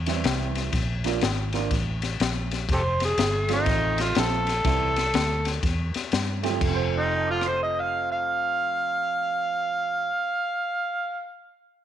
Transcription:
Already playing: fingered electric bass E2
0.06 upright piano E3 G3 C4 E4, snare, ride
0.24 fingered electric bass C2, snare, ride
0.55 snare, ride
0.73 fingered electric bass A#1, kick, snare, ride
1.04 upright piano F3 A#3 D4 F4, snare, ride
1.21 fingered electric bass G#1, snare, ride
1.53 upright piano F3 A#3 D4 F4, snare, ride
1.71 fingered electric bass A1, kick, snare, ride
2.02 snare, ride
2.20 fingered electric bass A#1, snare, ride
2.51 snare, ride
2.69 fingered electric bass F1, kick, snare, ride
2.73 harmonica G4 A4 C5
3.00 snare, ride
3.05 harmonica G#4
3.18 fingered electric bass G1, snare, ride
3.49 upright piano F3 A3 C4 F4, snare, ride
3.53 harmonica D#4
3.66 fingered electric bass A1, kick, snare, ride
3.98 harmonica F4, snare, ride
4.15 fingered electric bass A#1, upright piano F3 A3 C4 F4, snare, ride
4.19 harmonica A4
4.47 snare, ride
4.65 fingered electric bass C2, upright piano E3 G3 C4 E4, kick, snare, ride
4.96 snare, ride
5.14 fingered electric bass D2, snare, ride
5.45 snare, ride
5.63 fingered electric bass E2, kick, snare, ride
5.94 muted fingered electric bass stroke, snare, ride
6.12 fingered electric bass G2, snare, ride
6.43 upright piano F3 A3 C4 G4, snare, ride
6.50 upright piano F2
6.56 upright piano F3
6.61 fingered electric bass F1, upright piano A3, kick, crash
6.68 upright piano C4
6.74 upright piano C5
6.98 harmonica D#4
7.11 upright piano D#5
7.19 upright piano A5
7.27 harmonica F4, upright piano D6
7.36 upright piano F6
7.41 cross-stick
7.46 harmonica C5, upright piano C7
7.56 upright piano D#7
7.63 harmonica D#5
7.81 harmonica F5
8.12 harmonica F5

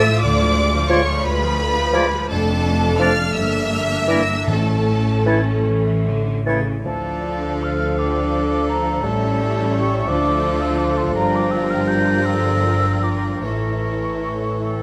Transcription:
Already playing: harp D3 D4 F4 A4 D5 F5 A5, viola section F4, violin section E5 E6
0.07 viola section F3, harp A3
0.23 double bass section D2, cello section D2, viola section D3, harp D3, violin section D5 D6
0.40 viola section F3, harp G#3
0.56 viola section G#3, harp D4
0.73 viola section F3, harp F4
0.89 viola section D3, bassoon F3, french horn section G#3 F4, clarinet F4, harp G#4, violin section C#5 C#6, oboe D5, flute G#6
1.07 viola section F3, harp D5
1.24 cello section D2, double bass section D2, viola section G#3, violin section B4 B5, harp F5
1.42 viola section F3, harp G#5
1.59 viola section D3, harp F5
1.77 viola section F3, harp G#4
1.93 bassoon F3, french horn section G#3 F4, viola section G#3, clarinet F4, harp F4, oboe D5, flute G#6
2.13 viola section F3, harp G#3
2.29 double bass section F1, cello section F2, harp F2, viola section A3 D4, violin section A4 A5
2.48 harp F3
2.65 harp A3
2.83 harp D4
2.99 bassoon F3, french horn section A3 D4, clarinet D4, harp F4, oboe D5, violin section F5 F6, flute A6
3.18 harp A4
3.35 double bass section G1, harp G2, cello section G2, viola section A#3 D4, violin section E5 E6
3.44 violin section F6
3.53 harp D3, violin section E6
3.60 violin section F6
3.68 violin section E6
3.73 harp A#3, violin section F6
3.85 violin section E6
3.92 harp D4, violin section F6
3.99 violin section E6
4.08 bassoon E3, french horn section A#3 D4, clarinet E4, harp E4, oboe D5, violin section F6, flute A#6
4.16 violin section E6
4.30 harp A#4
4.47 double bass section A1, cello section A2, timpani A2, harp A2, viola section A3 C#4, violin section A4 A5
4.68 harp E3
4.87 harp A3
5.08 harp C#4
5.26 bassoon E3, french horn section A3 C#4, harp E4, clarinet E4, oboe C#5, flute A6
5.47 harp A4
5.66 cello section E3, harp C#5
5.87 harp E5
6.06 cello section D3, harp C#5
6.26 harp E4
6.46 cello section C#3, bassoon E3, french horn section A3 C#4, clarinet E4, oboe C#5, flute A6
6.66 harp E3
6.85 double bass section D2, timpani D3, harp D3, cello section D3, bassoon F3, viola section F3 D4, french horn section F3 D4, clarinet D4, violin section A4 D5 F5, oboe A4, flute A5
7.23 harp F4
7.61 harp A4, flute F6
7.97 viola section F3 D4, harp G4, violin section A4 D5, flute D6
8.32 harp A4
8.68 harp F4, flute A#5
9.02 double bass section A1, harp A2, cello section A2, bassoon G3, french horn section G3 C#4, viola section G3 E4, clarinet C#4, violin section A4 C#5 E5, flute A5
9.38 harp C#4
9.73 harp E4 G4, flute C#6
10.07 double bass section D2, cello section D2, harp D3, french horn section F3 D4, bassoon F3, viola section F3 F4, clarinet D4, violin section A4 D5, flute D6
10.43 harp D4
10.61 flute E6
10.77 harp F4 A4, flute D6
10.97 flute C6
11.14 double bass section G1, harp G2, cello section G2, viola section G3 F4, violin section A#4 D5 G5, oboe A#4, flute A#5
11.35 flute D6
11.51 flute E6
11.70 flute F6
11.87 harp A#4, flute G6
12.24 harp A4, violin section G5, flute E6
12.63 viola section F3, harp A#4
13.03 harp F4, flute D6
13.43 double bass section A1, harp A2, cello section A2, bassoon E3, viola section E3 E4, french horn section E3 E4, clarinet E4, violin section A4 C#5 E5, flute C#6
13.85 harp E4
14.26 harp A4
14.65 harp G4, oboe A4

